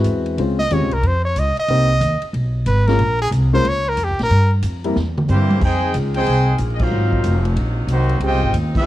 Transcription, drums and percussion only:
0.04 hi-hat pedal, ride
0.26 ride
0.38 ride
0.59 snare
0.70 hi-hat pedal, ride
0.91 ride
1.03 ride
1.36 hi-hat pedal, ride
1.57 ride
1.68 ride
2.01 hi-hat pedal, ride
2.22 ride
2.34 ride
2.66 hi-hat pedal, ride
2.88 snare, ride
2.99 ride
3.32 hi-hat pedal, ride
3.65 ride
3.97 hi-hat pedal, ride
4.19 snare, ride
4.31 ride
4.62 hi-hat pedal, ride
4.84 ride
4.96 snare
5.17 mid tom
5.28 hi-hat pedal, high tom
5.50 high tom
5.61 kick, crash
5.94 hi-hat pedal, ride
6.14 ride
6.26 ride
6.58 hi-hat pedal, ride
6.79 kick, crash
7.12 kick
7.24 hi-hat pedal, ride
7.45 ride
7.56 ride
7.88 hi-hat pedal, ride
8.09 ride
8.20 ride
8.54 hi-hat pedal, ride
8.75 kick, crash

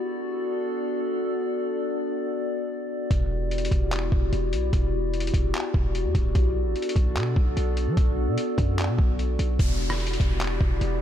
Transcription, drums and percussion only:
3.11 kick, closed hi-hat
3.51 closed hi-hat
3.58 closed hi-hat
3.65 closed hi-hat
3.71 kick, closed hi-hat
3.92 clap, closed hi-hat
4.12 kick
4.33 closed hi-hat
4.53 closed hi-hat
4.73 kick, closed hi-hat
5.14 closed hi-hat
5.20 closed hi-hat
5.27 closed hi-hat
5.34 kick, closed hi-hat
5.54 clap, closed hi-hat
5.74 kick
5.95 closed hi-hat
6.15 kick, closed hi-hat
6.35 kick, closed hi-hat
6.76 closed hi-hat
6.82 closed hi-hat
6.89 closed hi-hat
6.96 kick, closed hi-hat
7.16 clap, closed hi-hat
7.36 kick
7.57 closed hi-hat
7.77 closed hi-hat
7.97 kick, closed hi-hat
8.38 closed hi-hat
8.58 kick, closed hi-hat
8.78 clap, closed hi-hat
8.98 kick
9.19 closed hi-hat
9.39 closed hi-hat
9.59 kick, closed hi-hat
9.90 cross-stick
10.00 closed hi-hat
10.07 closed hi-hat
10.13 closed hi-hat
10.20 kick, closed hi-hat
10.40 clap, closed hi-hat
10.61 kick
10.81 closed hi-hat

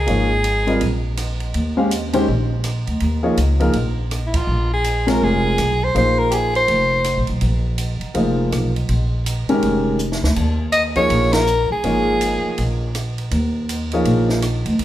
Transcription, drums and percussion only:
0.07 ride
0.44 hi-hat pedal, ride
0.67 ride
0.81 ride
1.17 cross-stick, hi-hat pedal, ride
1.40 ride
1.54 ride
1.91 hi-hat pedal, ride
2.13 ride
2.64 cross-stick, hi-hat pedal, ride
2.87 ride
3.00 ride
3.37 hi-hat pedal, ride
3.60 ride
3.73 ride
4.11 cross-stick, hi-hat pedal, ride
4.34 kick, ride
4.84 hi-hat pedal, ride
5.08 snare, ride
5.58 cross-stick, hi-hat pedal, ride
5.96 ride
6.32 hi-hat pedal, ride
6.55 ride
6.68 ride
7.04 cross-stick, hi-hat pedal, ride
7.27 ride
7.41 ride
7.78 hi-hat pedal, ride
8.01 ride
8.15 ride
8.52 cross-stick, hi-hat pedal, ride
8.76 ride
8.89 ride
9.26 hi-hat pedal, ride
9.49 ride
9.62 ride
9.99 hi-hat pedal
10.12 snare
10.24 snare
10.36 kick, crash
10.72 hi-hat pedal, ride
10.96 kick, ride
11.10 ride
11.33 snare, ride
11.47 hi-hat pedal
11.84 ride
12.21 hi-hat pedal, ride
12.58 ride
12.95 cross-stick, hi-hat pedal, ride
13.18 ride
13.31 ride
13.69 hi-hat pedal, ride
13.92 ride
14.05 ride
14.29 snare
14.42 cross-stick, hi-hat pedal, ride
14.66 ride
14.79 ride

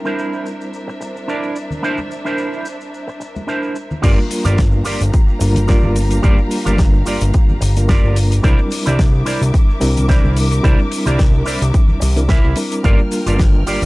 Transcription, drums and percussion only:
0.05 maracas
0.19 maracas
0.33 maracas
0.46 maracas
0.61 maracas
0.74 maracas
0.89 maracas
1.01 maracas
1.17 maracas
1.29 maracas
1.43 maracas
1.56 maracas
1.71 low conga, maracas
1.84 maracas
1.98 high conga, maracas
2.11 maracas
2.26 maracas
2.38 maracas
2.53 maracas
2.65 maracas
2.81 maracas
2.94 maracas
3.08 maracas
3.21 maracas
3.36 high conga, maracas
3.48 maracas
3.63 maracas
3.75 maracas
3.91 low conga, maracas
4.03 kick, closed hi-hat, crash, maracas, shaker
4.18 high conga, maracas
4.31 open hi-hat, maracas, shaker
4.45 closed hi-hat, low conga, shaker, maracas
4.58 kick, snare, closed hi-hat, maracas, shaker
4.72 maracas
4.85 open hi-hat, shaker, maracas
5.01 closed hi-hat, maracas, shaker
5.13 kick, closed hi-hat, maracas, shaker
5.28 maracas
5.41 open hi-hat, maracas, shaker
5.55 closed hi-hat, low conga, maracas, shaker
5.68 kick, snare, closed hi-hat, shaker, maracas
5.83 low conga, maracas
5.96 open hi-hat, maracas, shaker
6.11 closed hi-hat, maracas, shaker
6.23 kick, closed hi-hat, maracas, shaker
6.38 high conga, maracas
6.51 open hi-hat, maracas, shaker
6.66 closed hi-hat, low conga, maracas, shaker
6.78 kick, snare, closed hi-hat, shaker, maracas
6.94 maracas
7.06 open hi-hat, maracas, shaker
7.21 closed hi-hat, shaker, maracas
7.34 kick, closed hi-hat, shaker, maracas
7.49 low conga, maracas
7.61 open hi-hat, maracas, shaker
7.76 closed hi-hat, maracas, shaker
7.88 kick, snare, closed hi-hat, maracas, shaker
8.04 maracas
8.16 open hi-hat, shaker, maracas
8.32 closed hi-hat, maracas, shaker
8.43 kick, closed hi-hat, maracas, shaker
8.58 high conga, maracas
8.71 open hi-hat, maracas, shaker
8.86 closed hi-hat, low conga, shaker, maracas
8.99 kick, snare, closed hi-hat, maracas, shaker
9.14 maracas
9.26 open hi-hat, maracas, shaker
9.41 closed hi-hat, maracas, shaker
9.54 kick, closed hi-hat, maracas, shaker
9.70 maracas
9.81 open hi-hat, shaker, maracas
9.97 closed hi-hat, low conga, maracas, shaker
10.09 kick, snare, closed hi-hat, maracas, shaker
10.24 low conga, maracas
10.37 open hi-hat, maracas, shaker
10.51 closed hi-hat, maracas, shaker
10.64 kick, closed hi-hat, shaker, maracas
10.78 high conga, maracas
10.92 open hi-hat, maracas, shaker
11.06 closed hi-hat, low conga, maracas, shaker
11.19 kick, snare, closed hi-hat, shaker, maracas
11.33 maracas
11.46 open hi-hat, maracas, shaker
11.62 closed hi-hat, maracas, shaker
11.74 kick, closed hi-hat, maracas, shaker
11.88 low conga, maracas
12.01 open hi-hat, maracas, shaker
12.16 closed hi-hat, maracas, shaker
12.29 kick, snare, closed hi-hat, maracas, shaker
12.44 maracas
12.56 open hi-hat, maracas, shaker
12.71 closed hi-hat, shaker, maracas
12.84 kick, closed hi-hat, shaker, maracas
12.98 high conga, maracas
13.11 open hi-hat, maracas, shaker
13.26 closed hi-hat, low conga, maracas, shaker
13.38 kick, snare, closed hi-hat, maracas, shaker
13.53 maracas
13.67 open hi-hat, maracas, shaker
13.81 closed hi-hat, maracas

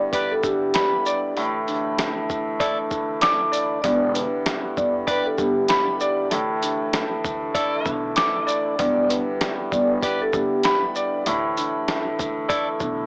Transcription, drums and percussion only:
0.13 kick, closed hi-hat
0.44 kick, shaker
0.74 snare, closed hi-hat
1.06 shaker
1.37 closed hi-hat
1.68 closed hi-hat, shaker
1.99 snare, closed hi-hat
2.30 kick, shaker
2.60 kick, closed hi-hat
2.91 kick, shaker
3.21 snare, closed hi-hat
3.53 closed hi-hat, shaker
3.84 kick, closed hi-hat
4.15 closed hi-hat, shaker
4.46 snare, closed hi-hat
4.77 kick, shaker
5.07 kick, closed hi-hat
5.38 kick, shaker
5.68 snare, closed hi-hat
6.00 shaker
6.31 closed hi-hat
6.63 closed hi-hat, shaker
6.93 snare, closed hi-hat
7.25 kick, shaker
7.55 kick, closed hi-hat
7.86 kick, shaker
8.16 snare, closed hi-hat
8.48 shaker
8.79 kick, closed hi-hat
9.10 closed hi-hat, shaker
9.41 snare, closed hi-hat
9.72 kick, shaker
10.02 kick, closed hi-hat
10.33 kick, shaker
10.63 snare, closed hi-hat
10.96 shaker
11.26 closed hi-hat
11.58 closed hi-hat, shaker
11.88 snare, closed hi-hat
12.19 kick, shaker
12.50 kick, closed hi-hat
12.80 kick, shaker

